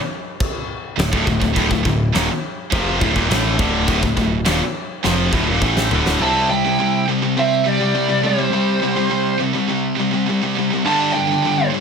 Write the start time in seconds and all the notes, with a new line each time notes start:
0.40 kick, china
0.98 D1 D2 A2, snare, china
1.13 D1 D2 A2, kick
1.27 D1 D2 A2, kick
1.42 D1 D2 A2, kick
1.56 D1 D2 A2, kick, china
1.71 D1 D2 A2, kick
1.85 D1 D2 A2, kick
2.14 D#1 D#2 A#2, snare, china
2.72 F1 F2 C3 F3, kick, china
3.00 D1 D2 A2, kick
3.15 D#1 D#2 A#2, kick
3.30 A1 A2 E3 A3, snare, china
3.59 D1 D2 A2 D3, kick
3.88 D1 D2 A2, kick, china
4.02 D1 D2 A2, kick
4.17 D1 D2 A2, kick
4.45 D#1 D#2 A#2, snare, china
5.04 F1 F2 C3 F3, snare
5.33 D1 D2 A2, kick
5.48 D#1 D#2 A#2
5.62 A1 A2 E3 A3, kick
5.77 snare
5.91 D1 D2 A2 D3, floor tom
6.06 snare
6.20 C3 G3 C4 E4 A5
6.49 C3 G3 E4 G5
6.66 C3 G3
6.80 C3 G3
7.09 C3 G3
7.22 C3 G3
7.37 C3 G3 C4 E5
7.66 C3 G3 D5
7.80 C3 G3
7.95 C3 G3
8.09 C3 G3
8.23 C3 G3 C5
8.38 C3 G3
8.53 C3 G3 C4
8.83 C3 G3
8.96 C3 G3
9.10 C3 G3
9.40 C3 G3
9.55 C3 G3
9.69 C3 G3
10.00 C3 G3
10.13 C3 G3
10.29 C3 G3
10.43 C3 G3
10.59 C3 G3
10.73 C3 G3
10.85 G2 D3 G3 D4 A5
11.13 G2 D3 D4 G5
11.27 G2 D3
11.31 G2 D3
11.45 G2 D3
11.74 G2 D3